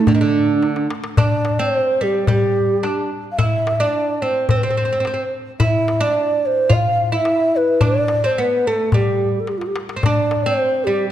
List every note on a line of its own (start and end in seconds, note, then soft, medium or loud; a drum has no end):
0.00 0.07 D#4 medium
0.06 0.14 D3 medium
0.06 0.90 D4 medium
0.06 darbuka dum medium
0.15 0.21 D#3 medium
0.21 0.86 D3 medium
0.62 darbuka tek soft
0.76 darbuka ka medium
0.90 darbuka tek medium
1.04 darbuka ka medium
1.17 1.56 D4 medium
1.17 1.62 D5 loud
1.17 darbuka dum medium
1.45 darbuka tek medium
1.59 2.02 C4 medium
1.59 2.04 C5 medium
2.01 2.27 G3 medium
2.01 2.29 G4 medium
2.27 2.85 G3 medium
2.27 3.08 G4 medium
2.27 darbuka dum medium
2.83 3.09 D4 medium
2.83 darbuka tek medium
3.32 3.39 F5 medium
3.38 3.80 E4 medium
3.38 3.82 E5 loud
3.38 darbuka dum medium
3.67 darbuka tek medium
3.80 4.22 D4 medium
3.80 4.24 D5 medium
4.22 4.49 C4 medium
4.22 4.49 C5 medium
4.49 4.62 C4 medium
4.49 4.58 C5 medium
4.49 darbuka dum medium
4.57 4.66 B4 medium
4.63 4.69 C4 medium
4.63 5.33 C5 medium
4.70 4.76 C4 soft
4.77 4.84 C4 medium
4.85 4.91 C4 soft
4.92 4.99 C4 soft
5.00 5.06 C4 soft
5.05 5.13 C4 soft
5.05 darbuka tek medium
5.14 5.22 C4 soft
5.60 5.99 E4 medium
5.60 6.05 E5 loud
5.60 darbuka dum medium
5.88 darbuka tek medium
6.00 6.69 D4 medium
6.00 6.47 D5 medium
6.46 6.75 C5 medium
6.70 7.09 F4 medium
6.70 7.16 F5 loud
6.70 darbuka dum medium
7.12 7.78 E4 medium
7.12 7.58 E5 medium
7.25 darbuka tek medium
7.56 7.83 B4 medium
7.81 8.24 D4 medium
7.81 darbuka dum medium
7.85 8.27 D5 medium
8.08 darbuka tek medium
8.24 8.38 C4 medium
8.24 8.41 C5 medium
8.38 8.66 B3 medium
8.38 8.69 B4 medium
8.67 8.94 A3 medium
8.67 8.93 A4 medium
8.92 9.37 G3 medium
8.92 9.41 G4 medium
8.92 darbuka dum medium
9.40 9.51 A4 medium
9.47 9.59 G4 medium
9.47 darbuka tek soft
9.58 9.68 F4 medium
9.58 darbuka ka medium
9.67 9.76 G4 medium
9.76 darbuka tek medium
9.89 darbuka ka medium
9.96 10.03 C4 medium
10.02 10.46 D4 medium
10.02 10.45 D5 medium
10.02 darbuka dum medium
10.31 darbuka tek medium
10.44 10.88 C4 medium
10.44 10.86 C5 medium
10.85 11.08 G3 medium
10.85 11.10 G4 medium